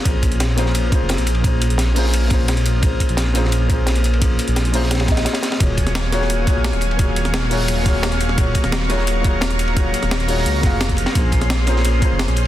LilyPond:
<<
  \new Staff \with { instrumentName = "Analog synth pad" } { \time 4/4 \key ees \dorian \tempo 4 = 173 << { r1 | r1 | r1 | r1 |
<ges f'' des'''>1~ | <ges f'' des'''>1~ | <ges f'' des'''>1~ | <ges f'' des'''>1 |
<aes' c'''>1 | } \\ { r1 | r1 | r1 | r1 |
aes''1~ | aes''1 | bes''1~ | bes''1 |
des'1 | } >> }
  \new Staff \with { instrumentName = "Felt piano" } { \time 4/4 \key ees \dorian <bes des' f' aes' c''>4. <bes des' f' aes' c''>4 <bes des' f' aes' c''>4. | <bes des' f' aes' c''>4. <bes des' f' aes' c''>4 <bes des' f' aes' c''>4. | <bes des' f' aes' c''>4. <bes des' f' aes' c''>4 <bes des' f' aes' c''>4. | <bes des' f' aes' c''>4. <bes des' f' aes' c''>4 <bes des' f' aes' ees''>4. |
<bes f' ges' aes' des''>4. <bes f' ges' aes' des''>4 <bes f' ges' aes' des''>4. | <bes f' ges' aes' des''>4. <bes f' ges' aes' des''>4 <bes f' ges' aes' des''>4. | <bes f' ges' aes' des''>4. <bes f' ges' aes' des''>4 <bes f' ges' aes' des''>4. | <bes f' ges' aes' des''>4. <bes f' ges' aes' des''>4 <bes f' ges' aes' f''>4. |
<bes des' f' aes' c''>4. <bes des' f' aes' c''>4 <bes des' f' aes' c''>4. | }
  \new Staff \with { instrumentName = "Detuned saw bass" } { \clef bass \time 4/4 \key ees \dorian bes,,2~ bes,,8 r16 f,,8 bes,,8.~ | bes,,8. bes,,2.~ bes,,16~ | bes,,8 r16 bes,,2.~ bes,,16~ | bes,,8 r16 bes,,2~ bes,,16 r4 |
ees,,2~ ees,,8 r16 bes,,8 ees,,8.~ | ees,,8. ees,,2.~ ees,,16~ | ees,,8 r16 ees,,2.~ ees,,16~ | ees,,8 r16 ees,,4~ ees,,16 des,8 f,,4~ f,,16 r16 |
bes,,2~ bes,,8 r16 f,,8 bes,,8. | }
  \new DrumStaff \with { instrumentName = "Drums" } \drummode { \time 4/4 <hh bd cymr>8 <hh bd cymr>16 hh16 <hh cymr sn>8 <hh cymr sn>16 sn16 <hh cymr>8 <hh bd cymr>8 <hh cymr sn>16 hh16 <hh cymr>16 cymr16 | <hh bd cymr>8 <hh cymr>16 hh16 <hh cymr sn>8 <hh hho>16 sn16 <hh cymr>8 <hh bd cymr sn>8 <hh cymr sn>16 hh16 <hh cymr>8 | <hh bd cymr>8 <hh bd cymr>16 hh16 <hh cymr sn>8 <hh cymr sn>16 sn16 <hh cymr>8 <hh bd cymr>8 <hh cymr sn>16 hh16 <hh cymr>16 cymr16 | <hh bd cymr>8 <hh cymr>16 hh16 <hh cymr sn>16 hh16 <hh hho>16 sn16 <hh cymr sn>32 <cymr sn>32 <cymr sn>16 <hh bd cymr sn>16 <hh cymr sn>16 <hh cymr sn>16 <hh cymr sn>16 <hh cymr sn>16 <cymr sn>16 |
<hh bd cymr>8 <hh bd cymr>16 <hh sn>16 <hh cymr sn>8 <hh cymr sn>16 sn16 <hh cymr>8 <hh bd cymr>8 <hh cymr sn>16 <hh sn>16 <hh cymr>16 cymr16 | <hh bd cymr>8 <hh cymr>16 <hh sn>16 <hh cymr sn>8 <hh hho>16 sn16 <hh cymr>8 <hh bd cymr sn>8 <hh cymr sn>16 hh16 <hh cymr>16 sn16 | <hh bd cymr>8 <hh bd cymr>16 <hh sn>16 <hh cymr sn>8 <hh cymr sn>16 sn16 <hh cymr>8 <hh bd cymr>8 <hh cymr sn>16 <hh sn>16 <hh cymr>16 cymr16 | <hh bd cymr>8 <hh cymr>16 <hh sn>16 <hh cymr sn>16 hh16 <hh hho>16 sn16 hh8 <hh bd cymr sn>8 <hh cymr sn>16 <hh bd>16 <hh cymr>16 <cymr sn>16 |
<hh bd cymr>8 <hh bd cymr>16 <hh sn>16 <hh cymr sn>8 <hh cymr sn>16 sn16 <hh cymr>8 <hh bd cymr>8 <hh cymr sn>16 <hh sn>16 <hh cymr>8 | }
>>